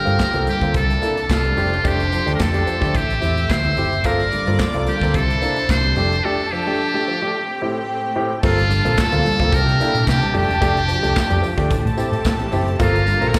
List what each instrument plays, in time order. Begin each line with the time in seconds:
Already playing: string section G3 A#3 F4 G4 G5, muted trumpet A#4
0.05 fingered electric bass G2, grand piano A#3 C4 F4 A4, closed hi-hat
0.20 kick, snare, clap, tambourine
0.33 fingered electric bass C2, grand piano A#3 C4 F4 A4, closed hi-hat
0.47 grand piano G2 D3, muted trumpet G4, closed hi-hat, tambourine
0.61 fingered electric bass D2, grand piano A#3 C4 F4 A4, kick, closed hi-hat
0.73 fingered electric bass C2, string section C3 D4 E4 A4 A5, grand piano C3 G3, muted trumpet A4, kick, closed hi-hat, tambourine
0.90 closed hi-hat
1.02 grand piano A#3 D4 E4 A4, closed hi-hat, tambourine
1.17 grand piano E4 A4, closed hi-hat
1.30 fingered electric bass C2, grand piano E4 A4, muted trumpet F4, kick, snare, clap, tambourine
1.44 grand piano C3 G3, closed hi-hat
1.56 fingered electric bass F1, string section F3 G4 A4 C5 C6, grand piano A3 D4 G4, open hi-hat, tambourine
1.74 closed hi-hat
1.84 fingered electric bass F1, grand piano A3 D4 G4, muted trumpet G4, kick, closed hi-hat, tambourine
2.00 closed hi-hat
2.12 grand piano F3, closed hi-hat, tambourine
2.26 fingered electric bass D2, grand piano A3 D4 G4, closed hi-hat
2.35 muted trumpet A#4
2.40 fingered electric bass F2, muted trumpet A4, kick, snare, clap, tambourine
2.53 grand piano A3 D4 G4, closed hi-hat
2.67 grand piano F3, closed hi-hat, tambourine
2.80 fingered electric bass D2, grand piano A3 D4 G4, kick, snare, closed hi-hat
2.93 fingered electric bass A1, grand piano A2 E3, string section A3 C4 E5 E6, muted trumpet G4, kick, closed hi-hat, tambourine
3.10 closed hi-hat
3.21 fingered electric bass E2, grand piano C4 E4 G4, closed hi-hat, tambourine
3.36 grand piano E4 G4, closed hi-hat
3.50 fingered electric bass D2, grand piano E4 G4, muted trumpet C5, kick, snare, clap, tambourine
3.64 grand piano A2 E3, closed hi-hat
3.76 fingered electric bass F#1, grand piano C4 E4 G4, open hi-hat, tambourine
3.93 closed hi-hat
4.04 fingered electric bass G1, string section G3 A#3 F4 D5 D6, grand piano A#3 C4 F4 A4, muted trumpet A#4, kick, closed hi-hat, tambourine
4.20 closed hi-hat
4.32 grand piano G2 D3, closed hi-hat, tambourine
4.47 fingered electric bass G2, grand piano A#3 C4 F4 A4, closed hi-hat
4.59 kick, snare, clap, tambourine
4.73 fingered electric bass C2, grand piano A#3 C4 F4 A4, closed hi-hat
4.87 grand piano G2 D3, muted trumpet G4, closed hi-hat, tambourine
5.01 fingered electric bass D2, grand piano A#3 C4 F4 A4, kick, snare, closed hi-hat
5.14 fingered electric bass C2, grand piano C3 G3, string section C3 D4 E4 A4 C5 C6, muted trumpet A4, kick, closed hi-hat, tambourine
5.30 closed hi-hat
5.42 grand piano A#3 D4 E4 A4, closed hi-hat, tambourine
5.57 grand piano E4 A4, closed hi-hat
5.69 fingered electric bass C2, grand piano E4 A4, muted trumpet C5, kick, snare, clap, tambourine
5.83 grand piano C3 G3, closed hi-hat
5.96 fingered electric bass F1, string section F3 G4 A4 A5, grand piano A3 D4 G4, open hi-hat
6.13 closed hi-hat
6.24 grand piano A3 D4 G4, muted trumpet A4
6.52 grand piano F3, muted trumpet G4
6.66 grand piano A3 D4 G4
6.94 grand piano A3 D4 G4
7.08 grand piano F3
7.22 grand piano A3 D4 G4
7.34 string section A3 C4 G4 G5
7.62 grand piano A2 C4 E4 G4
7.76 grand piano E4 G4
8.16 grand piano A2 C4 E4 G4
8.31 grand piano E4 G4
8.43 fingered electric bass G1, string section G3 A#3 F4 A4 A5, grand piano A#3 C4 F4 A4, muted trumpet F4, kick, crash, tambourine
8.59 closed hi-hat
8.70 grand piano G2 D3, closed hi-hat, tambourine
8.85 fingered electric bass A#1, grand piano A#3 C4 F4 A4, closed hi-hat
8.97 muted trumpet A4, kick, snare, clap, tambourine
9.12 fingered electric bass D2, grand piano A#3 C4 F4 A4, closed hi-hat
9.25 grand piano G2 D3, open hi-hat, tambourine
9.40 fingered electric bass C2, grand piano A#3 C4 F4 A4, kick, snare, closed hi-hat
9.51 fingered electric bass C2, grand piano C3 G3, string section C3 D4 E4 G4 G5 A5, muted trumpet A#4, kick, closed hi-hat
9.67 fingered electric bass C3, closed hi-hat
9.80 grand piano A#3 D4 E4 A4, closed hi-hat, tambourine
9.94 fingered electric bass A#2, grand piano E4 A4, closed hi-hat
10.07 fingered electric bass C3, grand piano E4 A4, muted trumpet G4, kick, snare, clap, tambourine
10.22 grand piano C3 G3, closed hi-hat
10.34 fingered electric bass F1, string section F3 G4 G5, grand piano A3 D4 G4, muted trumpet G4, open hi-hat
10.49 fingered electric bass E1, closed hi-hat
10.61 fingered electric bass F1, grand piano A3 D4 G4, kick, closed hi-hat, tambourine
10.77 closed hi-hat
10.88 grand piano F3, closed hi-hat, tambourine
11.03 fingered electric bass C2, grand piano A3 D4 G4, closed hi-hat
11.16 kick, snare, clap, tambourine
11.30 fingered electric bass F2, grand piano A3 D4 G4, closed hi-hat
11.42 grand piano F3, open hi-hat, tambourine
11.57 fingered electric bass D2, grand piano A3 D4 G4, kick, snare, closed hi-hat
11.70 fingered electric bass A1, grand piano A2 E3, string section A3 C4 G4 A4 A5, kick, closed hi-hat, tambourine
11.85 fingered electric bass A2, closed hi-hat
11.97 grand piano C4 E4 G4, closed hi-hat, tambourine
12.12 fingered electric bass A2, grand piano E4 G4, closed hi-hat
12.25 grand piano E4 G4, kick, snare, clap, tambourine
12.39 grand piano A2 E3, closed hi-hat
12.52 fingered electric bass F#1, grand piano C4 E4 G4, open hi-hat, tambourine
12.68 closed hi-hat
12.79 fingered electric bass G1, string section G3 A#3 F4 A#5, grand piano A#3 C4 F4 A4, muted trumpet F4, kick, closed hi-hat, tambourine
12.96 closed hi-hat
13.07 grand piano G2 D3, closed hi-hat, tambourine
13.21 fingered electric bass A#1, grand piano A#3 C4 F4 A4, closed hi-hat
13.28 muted trumpet A#4
13.34 muted trumpet A4, kick, snare, clap, tambourine